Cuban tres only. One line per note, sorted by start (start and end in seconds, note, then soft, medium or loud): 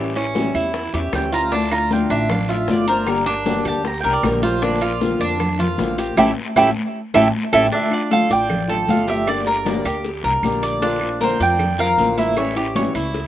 0.00 0.15 G4 medium
0.16 0.54 C#4 medium
0.55 0.92 E4 medium
0.94 1.31 G4 medium
1.32 1.51 F4 medium
1.52 1.71 D4 medium
1.71 2.09 F4 medium
2.10 2.48 D4 medium
2.49 2.87 F4 medium
2.88 3.25 A#4 medium
3.26 3.64 D4 medium
3.65 4.03 G4 medium
4.04 4.42 A#4 medium
4.43 4.62 F4 medium
4.62 4.81 D4 medium
4.82 5.19 F4 medium
5.21 5.58 D4 medium
5.60 5.97 F4 medium
5.98 6.16 G4 medium
6.17 6.30 E4 loud
6.17 6.30 G4 medium
6.17 6.30 A4 medium
6.56 6.69 E4 loud
6.56 6.69 G4 medium
6.56 6.69 A4 medium
7.14 7.27 E4 medium
7.14 7.27 G4 medium
7.14 7.27 A4 medium
7.53 7.65 E4 medium
7.53 7.65 G4 medium
7.53 7.65 A4 loud
7.72 8.10 D4 medium
8.11 8.30 A4 medium
8.31 8.68 D5 medium
8.69 9.07 A4 medium
9.08 9.27 G4 medium
9.27 9.46 D5 medium
9.47 9.65 A#4 medium
9.66 9.85 D5 medium
9.85 10.23 G4 medium
10.24 10.62 A#4 medium
10.63 10.82 D5 medium
10.82 11.20 D4 medium
11.21 11.40 A#4 medium
11.40 11.78 D5 medium
11.79 12.17 A#4 medium
12.18 12.36 E4 medium
12.37 12.56 C#5 medium
12.57 12.75 G4 medium
12.76 12.95 C#5 medium
12.95 13.27 E4 medium